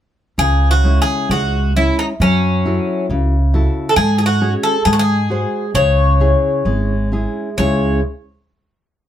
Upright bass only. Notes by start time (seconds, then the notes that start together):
0.38 C#2
1.29 C#2
2.20 F#2
3.10 C#2
3.97 G#2
4.86 G#2
5.74 C#2
6.65 G#1
7.58 C#2